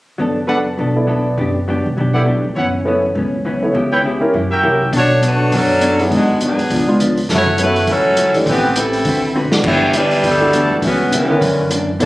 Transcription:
0.18 upright bass F#1, hollow-body jazz guitar F#3 B3 D4 A4
0.47 hollow-body jazz guitar F#3 B3 D4 A4, trumpet section D4 A4 B4 F#5
0.78 upright bass B1, hollow-body jazz guitar F#3 B3 D4 A4
0.96 grand piano B3 E4 A4 D5
1.07 hollow-body jazz guitar F#3 B3 D4 A4
1.37 upright bass F#1, hollow-body jazz guitar F#3 B3 D4 G4
1.68 hollow-body jazz guitar F#3 B3 D4 G4
1.86 upright bass E1
1.97 upright bass B1, hollow-body jazz guitar F#3 B3 D4 G4
2.14 grand piano B3 E4 A4 D5, trumpet section E4 G4 D5 F#5
2.25 hollow-body jazz guitar F#3 B3 D4 G4
2.44 upright bass C#2
2.56 upright bass F#1, hollow-body jazz guitar F#2 E3 B3 C#4, trumpet section E4 B4 C#5 F#5
2.85 hollow-body jazz guitar F#2 E3 B3 C#4, grand piano B3 E4 A4 C#5
3.15 upright bass C#2, hollow-body jazz guitar F#2 E3 B3 C#4
3.45 hollow-body jazz guitar F#2 E3 B3 C#4
3.63 grand piano B3 E4 A4 C#5
3.73 upright bass C#2, hollow-body jazz guitar C#3 B3 E4 G4
3.92 trumpet section E4 B4 C#5 G5
4.03 hollow-body jazz guitar C#3 B3 E4 G4
4.21 grand piano C#4 E4 G4 A#4
4.33 upright bass F#2, hollow-body jazz guitar F#3 A#3 E4 G4
4.51 trumpet section F#4 A#4 E5 G5
4.63 upright bass C2, hollow-body jazz guitar F#3 A#3 E4 G4, grand piano C#4 E4 G4 A#4
4.92 upright bass B1, hollow-body jazz guitar B3 D4 A4 C#5, kick, open hi-hat
4.96 saxophone section A3 D4 F#4 C#5
5.21 hollow-body jazz guitar B3 D4 A4 C#5, closed hi-hat
5.25 saxophone section A3 D4 F#4 B4
5.52 upright bass F#2, saxophone section F#3 C#4 D4 A4, hollow-body jazz guitar B3 D4 A4 C#5, kick, open hi-hat
5.81 hollow-body jazz guitar B3 D4 A4 C#5, closed hi-hat
5.99 grand piano F#3 B3 E4 G#4, open hi-hat
6.09 hollow-body jazz guitar G#2 F#3 B3 D4, upright bass G#2, kick, open hi-hat
6.15 saxophone section D3 G#3 B3 F#4
6.41 hollow-body jazz guitar G#2 F#3 B3 D4, saxophone section B3 D4, closed hi-hat
6.45 saxophone section F#3 G#4
6.58 muted upright bass stroke, open hi-hat
6.70 upright bass C#2, hollow-body jazz guitar C#3 F3 B3 D4, kick, open hi-hat
6.88 grand piano G#3 B3 D4 F4
7.00 hollow-body jazz guitar C#3 F3 B3 D4, closed hi-hat
7.17 open hi-hat
7.29 hollow-body jazz guitar F#2 E3 A3 C#4, upright bass F#2, kick, snare, open hi-hat
7.33 saxophone section A3 E4 F#4 C#5
7.47 kick
7.57 hollow-body jazz guitar F#2 E3 A3 C#4, grand piano F#3 B3 E4 A4, closed hi-hat
7.62 saxophone section A3 E4 F#4 B4
7.76 open hi-hat
7.86 upright bass C#2, hollow-body jazz guitar F#2 E3 A3 C#4, saxophone section E4 A4, kick, open hi-hat
7.90 saxophone section F#3 C#4
8.17 hollow-body jazz guitar F#2 E3 A3 C#4, closed hi-hat
8.34 grand piano E3 A3 D4 G4, muted upright bass stroke, open hi-hat
8.45 upright bass A1, saxophone section E3 B3 C4 G4, hollow-body jazz guitar A3 C4 G4 B4, kick, open hi-hat
8.75 saxophone section G3 C4 E4 A4, hollow-body jazz guitar A3 C4 G4 B4, closed hi-hat
8.93 open hi-hat
9.05 upright bass D2, hollow-body jazz guitar D3 C4 F#4 B4, kick, open hi-hat
9.35 hollow-body jazz guitar D3 C4 F#4 B4
9.44 upright bass C2
9.51 upright bass G#1, grand piano E3 A3 D4 F#4, snare
9.64 upright bass G1, hollow-body jazz guitar G2 E3 B3, saxophone section B3 E4 G4 C#5, kick, crash
9.68 hollow-body jazz guitar D4
9.93 hollow-body jazz guitar G2 E3 B3 D4, saxophone section G3 D4 E4 B4, closed hi-hat
10.11 open hi-hat
10.23 upright bass D2, hollow-body jazz guitar G2 E3 B3 D4, kick, open hi-hat
10.27 saxophone section G3 D4 E4 A4
10.40 grand piano E3 A3 D4 F#4
10.52 hollow-body jazz guitar G2 E3 B3 D4, closed hi-hat
10.70 muted upright bass stroke
10.81 upright bass C#2, hollow-body jazz guitar C#3 G3 B3 E4, kick, open hi-hat
10.85 saxophone section E3 B3 C#4 F#4
11.11 hollow-body jazz guitar C#3 G3 B3 E4, upright bass C#3, closed hi-hat
11.15 saxophone section E3 B3 C#4 G4
11.29 grand piano D3 C#4 E4 A#4
11.40 hollow-body jazz guitar F#2 E3 A#3 D4, upright bass F#2, kick, open hi-hat
11.70 hollow-body jazz guitar F#2 E3 A#3 D4, closed hi-hat
11.99 upright bass B1, hollow-body jazz guitar B3 D4 A4, grand piano B3 E4 A4 C#5, kick, open hi-hat

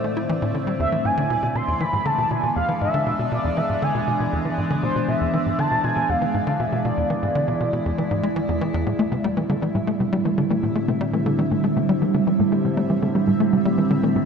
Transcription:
Already playing: ambient pad A2 D3 A3 C4 E4, analog synth lead C5, synth texture D5
0.04 analog synth bass A3
0.17 analog synth bass E4
0.29 analog synth bass E3
0.42 analog synth bass A2
0.54 analog synth bass D3
0.67 analog synth bass G3
0.80 analog synth bass E2, ambient pad E3, analog synth lead E5
0.92 analog synth bass E3
1.05 analog synth bass G#2, analog synth lead G#5
1.17 analog synth bass D3
1.27 analog synth bass B2, ambient pad G#3
1.33 ambient pad B3
1.43 analog synth bass B2
1.55 analog synth bass B2, analog synth lead C6
1.68 analog synth bass E2
1.80 analog synth bass E3, analog synth lead B5
1.93 analog synth bass G#2
2.05 analog synth bass D3, analog synth lead A5
2.18 analog synth bass B2
2.31 analog synth bass B2, ambient pad D4, analog synth lead G#5
2.43 analog synth bass B2
2.56 analog synth bass E2, analog synth lead F5
2.69 analog synth bass E3
2.81 analog synth bass G#2, analog synth lead E5
2.94 analog synth bass D3
3.06 analog synth bass B2
3.19 analog synth bass B2
3.32 analog synth bass B2, analog synth lead D5
3.44 analog synth bass E2
3.57 analog synth bass E3, analog synth lead E5
3.69 analog synth bass G#2
3.82 analog synth bass D3, analog synth lead G#5
3.95 analog synth bass B2
4.07 analog synth bass B2
4.20 analog synth bass B2
4.33 analog synth bass E2
4.45 analog synth bass E3
4.58 analog synth bass G#2
4.70 analog synth bass D3
4.83 analog synth bass B2, analog synth lead C5
4.96 analog synth bass B2
5.08 analog synth bass B2, analog synth lead E5
5.21 analog synth bass E2
5.33 analog synth bass E3
5.46 analog synth bass G#2
5.59 analog synth bass D3, analog synth lead A5
5.71 analog synth bass B2
5.84 analog synth bass B2, analog synth lead G#5
5.96 analog synth bass B2, ambient pad E4
6.09 analog synth bass E2, analog synth lead F5
6.22 analog synth bass E3
6.34 analog synth bass G#2
6.47 analog synth bass D3
6.60 analog synth bass B2, analog synth lead E5
6.72 analog synth bass B2
6.85 analog synth bass B2, analog synth lead D5
6.97 analog synth bass E2
7.10 analog synth bass E3
7.23 analog synth bass G#2
7.35 analog synth bass D3
7.48 analog synth bass B2
7.60 analog synth bass B2
7.73 analog synth bass B2
7.86 analog synth bass E2
7.98 analog synth bass E3
8.11 analog synth bass G#2
8.23 analog synth bass G#3
8.36 analog synth bass E3
8.49 analog synth bass E2
8.61 analog synth bass E3
8.74 analog synth bass E2
8.86 analog synth bass A2, ambient pad A2, synth arpeggio sound G3, synth texture E5
8.99 ambient pad G3, analog synth bass A3, synth arpeggio sound A3
9.08 analog synth bass C3, ambient pad D3, synth arpeggio sound G3
9.24 analog synth bass G3, synth arpeggio sound A3
9.37 analog synth bass E3, synth arpeggio sound G3
9.49 analog synth bass D3, synth arpeggio sound G3
9.62 analog synth bass E3, synth arpeggio sound A3
9.68 ambient pad C4
9.75 analog synth bass A2, synth arpeggio sound G3
9.87 analog synth bass A3, synth arpeggio sound A3
10.00 analog synth bass C3, synth arpeggio sound G3
10.13 analog synth bass G3, synth arpeggio sound G3
10.25 analog synth bass E3, synth arpeggio sound A3
10.38 analog synth bass D3, synth arpeggio sound G3
10.50 analog synth bass E3, synth arpeggio sound A3
10.63 analog synth bass A2, synth arpeggio sound G3
10.75 synth arpeggio sound G3, analog synth bass A3
10.88 analog synth bass C3, synth arpeggio sound A3
11.01 analog synth bass G3, synth arpeggio sound G3
11.13 analog synth bass E3, synth arpeggio sound A3
11.26 analog synth bass D3, synth arpeggio sound G3
11.39 analog synth bass E3, synth arpeggio sound G3
11.51 analog synth bass A2, synth arpeggio sound A3
11.64 synth arpeggio sound G3, analog synth bass A3
11.76 analog synth bass C3, synth arpeggio sound A3
11.89 analog synth bass G3, synth arpeggio sound G3
12.02 analog synth bass E3, synth arpeggio sound G3
12.14 analog synth bass D3, synth arpeggio sound A3
12.27 analog synth bass E3, synth arpeggio sound G3
12.39 analog synth bass A2, synth arpeggio sound A3
12.52 synth arpeggio sound G3, analog synth bass A3
12.64 analog synth bass C3, synth arpeggio sound G3
12.77 analog synth bass G3, synth arpeggio sound A3
12.90 analog synth bass E3, synth arpeggio sound G3
13.02 analog synth bass D3, synth arpeggio sound A3
13.15 analog synth bass E3, synth arpeggio sound G3
13.27 analog synth bass A2, synth arpeggio sound G3
13.40 synth arpeggio sound A3, analog synth bass A3
13.53 analog synth bass C3, synth arpeggio sound G3
13.65 analog synth bass G3, synth arpeggio sound A3
13.78 analog synth bass E3, synth arpeggio sound G3
13.90 analog synth bass D3, synth arpeggio sound G3
14.03 analog synth bass E3, synth arpeggio sound A3
14.16 analog synth bass A2, synth arpeggio sound G3

